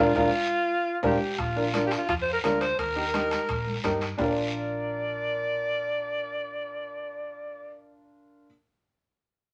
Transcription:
0.00 fingered electric bass A#1, alto saxophone F4
0.16 fingered electric bass A#1, upright piano D4 F4 A#4, bombo low, high conga, high timbale, long guiro
1.03 fingered electric bass A#1, upright piano D4 F4 A#4, alto saxophone G4, bombo low, high conga, high timbale, long guiro
1.38 fingered electric bass A#1, alto saxophone F4, bombo low, bombo rim, high conga, high timbale, long guiro
1.56 upright piano D4 F4 A#4
1.74 upright piano D4 F4 A#4, alto saxophone F4, bombo rim, high conga, high timbale, short guiro
1.87 alto saxophone G4
1.91 bombo rim, high timbale, short guiro
1.98 alto saxophone F4
2.09 fingered electric bass F2, alto saxophone F4, bombo low, bombo rim, high conga, high timbale, long guiro
2.22 alto saxophone C5
2.33 alto saxophone A#4
2.44 fingered electric bass D2, upright piano D4 F4 A#4, alto saxophone A#4, bombo rim, high conga, high timbale, low timbale, short guiro
2.61 alto saxophone C5, bombo rim, high timbale, short guiro
2.79 fingered electric bass D#2, alto saxophone A#4, bombo low, bombo rim, high conga, high timbale, long guiro
2.96 upright piano D#4 G4 A#4
3.14 upright piano D#4 G4 A#4, bombo rim, high conga, high timbale, short guiro
3.31 bombo rim, high conga, high timbale, short guiro
3.49 fingered electric bass A#1, bombo low, bombo rim, high conga, high timbale, long guiro
3.67 high conga
3.84 fingered electric bass G2, upright piano D#4 G4 A#4, bombo low, bombo rim, high conga, high timbale, low timbale, short guiro
4.01 bombo rim, high timbale, short guiro
4.18 fingered electric bass A#1, upright piano D4 F4, alto saxophone D5, bombo low, low conga, low timbale, long guiro
4.22 upright piano A#4

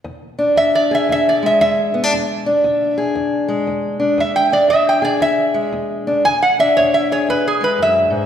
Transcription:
0.04 steel-string acoustic guitar E2
0.39 steel-string acoustic guitar D4
0.56 steel-string acoustic guitar E2, resonator guitar played with a steel bar E5
0.75 resonator guitar played with a steel bar D5
0.91 steel-string acoustic guitar G#4, resonator guitar played with a steel bar E5
1.09 steel-string acoustic guitar E2, resonator guitar played with a steel bar E5
1.29 resonator guitar played with a steel bar D5
1.43 steel-string acoustic guitar G#3, resonator guitar played with a steel bar E5
1.61 steel-string acoustic guitar E2, resonator guitar played with a steel bar E5
1.94 steel-string acoustic guitar B3
2.04 steel-string acoustic guitar D4
2.13 steel-string acoustic guitar E2
2.46 steel-string acoustic guitar D4
2.64 steel-string acoustic guitar E2
2.98 steel-string acoustic guitar G#4
3.15 steel-string acoustic guitar E2
3.48 steel-string acoustic guitar G#3
3.67 steel-string acoustic guitar E2
4.00 steel-string acoustic guitar D4
4.18 steel-string acoustic guitar E2, resonator guitar played with a steel bar E5
4.36 resonator guitar played with a steel bar G5
4.52 steel-string acoustic guitar D4, resonator guitar played with a steel bar D5
4.68 steel-string acoustic guitar E2, resonator guitar played with a steel bar E5
4.89 resonator guitar played with a steel bar G5
5.02 steel-string acoustic guitar G#4, resonator guitar played with a steel bar D5
5.20 steel-string acoustic guitar E2, resonator guitar played with a steel bar E5
5.54 steel-string acoustic guitar G#3
5.72 steel-string acoustic guitar E2
6.07 steel-string acoustic guitar D4
6.25 steel-string acoustic guitar E2, resonator guitar played with a steel bar G#5
6.42 resonator guitar played with a steel bar F#5
6.59 steel-string acoustic guitar D4, resonator guitar played with a steel bar E5
6.77 steel-string acoustic guitar E2, resonator guitar played with a steel bar C#5
6.94 resonator guitar played with a steel bar E5
7.12 steel-string acoustic guitar G#4, resonator guitar played with a steel bar C#5
7.29 steel-string acoustic guitar E2, resonator guitar played with a steel bar B4
7.48 resonator guitar played with a steel bar G#4
7.61 steel-string acoustic guitar G#3, resonator guitar played with a steel bar B4
7.79 steel-string acoustic guitar F#2, resonator guitar played with a steel bar E5
8.10 steel-string acoustic guitar G#2

